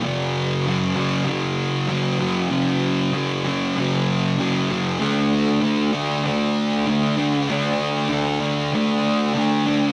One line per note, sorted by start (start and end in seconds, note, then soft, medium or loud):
0.02 0.66 F#2 medium
0.02 0.66 C#3 loud
0.02 0.68 F#3 loud
0.66 1.25 F#2 medium
0.66 0.97 C#3 medium
0.66 0.95 F#3 medium
0.95 1.27 C#3 medium
0.95 1.28 F#3 medium
1.25 1.86 F#2 medium
1.25 1.88 C#3 medium
1.25 1.90 F#3 medium
1.88 2.49 F#2 medium
1.88 2.21 C#3 medium
1.88 2.18 F#3 medium
2.19 2.50 C#3 medium
2.19 2.52 F#3 medium
2.50 3.11 F#2 medium
2.50 3.13 C#3 loud
2.50 3.14 F#3 medium
3.12 3.75 F#2 medium
3.12 3.46 C#3 medium
3.12 3.43 F#3 medium
3.44 3.76 C#3 medium
3.44 3.77 F#3 medium
3.77 4.37 F#2 medium
3.77 4.38 C#3 medium
3.77 4.39 F#3 medium
4.38 4.98 F#2 medium
4.38 4.70 C#3 medium
4.38 4.67 F#3 medium
4.68 4.99 C#3 medium
4.68 4.98 F#3 medium
4.99 5.61 D3 medium
4.99 5.62 A3 medium
4.99 5.64 D4 loud
5.61 6.23 D3 medium
5.61 5.94 A3 medium
5.61 5.92 D4 medium
5.92 6.25 A3 soft
5.92 6.26 D4 medium
6.24 6.85 D3 medium
6.24 6.87 A3 medium
6.24 6.88 D4 medium
6.86 7.47 D3 medium
6.86 7.19 A3 medium
6.86 7.15 D4 medium
7.16 7.49 A3 medium
7.16 7.50 D4 medium
7.48 8.08 D3 medium
7.48 8.11 A3 medium
7.48 8.11 D4 loud
8.09 8.71 D3 medium
8.09 8.43 A3 medium
8.09 8.39 D4 medium
8.40 8.73 A3 medium
8.40 8.75 D4 medium
8.73 9.33 D3 medium
8.73 9.35 A3 medium
8.73 9.36 D4 medium
9.34 9.92 D3 medium
9.34 9.67 A3 medium
9.34 9.64 D4 medium
9.66 9.92 A3 medium
9.66 9.92 D4 medium